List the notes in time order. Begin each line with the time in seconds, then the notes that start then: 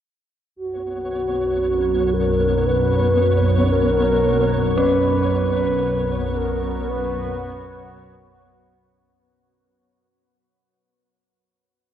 0.55 B1 F#2 B3 F#4 C#5
2.14 A#4
2.66 B4
3.71 A#4
4.76 B3 C#4 B4
5.53 F#4
6.36 A#4
6.66 C#5
6.89 B4